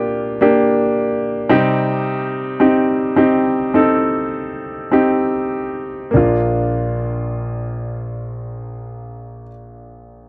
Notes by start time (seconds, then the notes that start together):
Already playing: A#3 D4 F4 G4
0.41 A#3 D4 G4
1.49 C3 G3 C4 D#4 G4
2.60 C4 D#4 G4
3.16 C4 D#4 G4
3.74 C4 D#4 A4
4.92 C4 D#4 G4
6.11 A#1 A#3 D4
6.17 F4